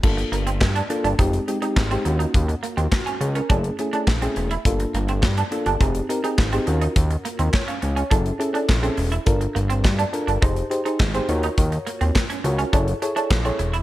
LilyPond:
<<
  \new Staff \with { instrumentName = "FM electric piano" } { \time 4/4 \key ees \lydian \tempo 4 = 104 << { r1 | r4 ges'8 aes'16 bes'8 r4. r16 | r1 | r4 des''16 f''8 des''8 r4. r16 |
r1 | r1 | } \\ { <bes d' f' a'>4 r8 <bes d' f' a'>8 <aes c' ees' g'>8 <aes c' ees' g'>16 <aes c' ees' g'>16 r16 <aes c' ees' g'>16 <bes des' f' ges'>8~ | <bes des' f' ges'>4 r4 <a cis' e' gis'>8 <a cis' e' gis'>16 <a cis' e' gis'>16 r16 <a cis' e' gis'>8 r16 | <bes d' f' a'>4 r8 <bes d' f' a'>8 <c' ees' g' aes'>8 <c' ees' g' bes'>16 <c' ees' g' aes'>16 r16 <c' ees' g' aes'>16 <des' f' ges' bes'>8~ | <des' f' ges' bes'>4 r4 <cis' e' gis' a'>8 <cis' e' gis' a'>16 <cis' e' gis' a'>16 r16 <cis' e' gis' a'>8 r16 |
<d' f' a' bes'>4 r8 <d' f' a' bes'>8 <ees' g' aes' c''>8 <ees' g' aes' c''>16 <ees' g' aes' c''>16 r16 <ees' g' aes' c''>16 <f' ges' bes' des''>8~ | <f' ges' bes' des''>4 r8 <f' ges' bes' des''>8 <e' gis' a' cis''>8 <e' gis' a' cis''>16 <e' gis' a' cis''>16 r16 <e' gis' a' cis''>8 r16 | } >> }
  \new Staff \with { instrumentName = "Clean electric guitar" } { \time 4/4 \key ees \lydian r8 bes16 c'16 r16 d'16 r16 d'16 ees'16 r8 ees'16 r16 c'16 r16 ees'16 | r8 bes16 c'16 r16 des'16 r16 des'16 d'16 r8 d'16 r16 c'16 r16 e'16 | r8 bes16 c'16 r16 d'16 r16 d'16 ees'16 r8 ees'16 r16 c'16 r16 ees'16 | r8 bes16 c'16 r16 des'16 r16 des'16 d'16 r8 d'16 r16 c'16 r16 e'16 |
r8 bes16 c'16 r16 d'16 r16 d'16 ees'16 r8 ees'16 r16 c'16 r16 ees'16 | r8 bes16 c'16 r16 des'16 r16 des'16 d'16 r8 d'16 r16 c'16 r16 e'16 | }
  \new Staff \with { instrumentName = "Analog synth bass" } { \clef bass \time 4/4 \key ees \lydian g,,8 g,,8 g,8 r16 g,,16 f,,8 r8 aes,,8 ees,8 | ees,8 r16 ees,16 r8 des,8 fis,,8 r8 bes,,8 e,,8 | g,,8 g,,8 g,8 r16 g,,16 f,,8 r8 aes,,8 ees,8 | ees,8 r16 ees,16 r8 des,8 fis,,8 r8 bes,,8 e,,8 |
g,,8 g,,8 g,8 r16 g,,16 f,,8 r8 aes,,8 ees,8 | ees,8 r16 ees,16 r8 des,8 fis,,8 r8 bes,,8 e,,8 | }
  \new DrumStaff \with { instrumentName = "Drums" } \drummode { \time 4/4 <cymc bd>16 hh16 hh16 hh16 <hc bd sn>16 hh16 hh16 hh16 <hh bd>16 hh16 hh16 hh16 <hc bd sn>16 hh16 hh16 hh16 | <hh bd>16 hh16 hh16 hh16 <hc bd sn>16 hh16 hh16 hh16 <hh bd>16 hh16 hh16 hh16 <hc bd sn>16 hh16 hh16 hh16 | <hh bd>16 hh16 hh16 hh16 <hc bd sn>16 hh16 hh16 hh16 <hh bd>16 hh16 hh16 hh16 <hc bd sn>16 hh16 hh16 hh16 | <hh bd>16 hh16 hh16 hh16 <hc bd sn>16 hh16 hh16 hh16 <hh bd>16 hh16 hh16 hh16 <hc bd sn>16 hh16 hho16 hh16 |
<hh bd>16 hh16 hh16 hh16 <hc bd sn>16 hh16 hh16 hh16 <hh bd>16 hh16 hh16 hh16 <hc bd sn>16 hh16 hh16 hh16 | <hh bd>16 hh16 hh16 hh16 <hc bd sn>16 hh16 hh16 hh16 <hh bd>16 hh16 hh16 hh16 <hc bd sn>16 hh16 hh16 hh16 | }
>>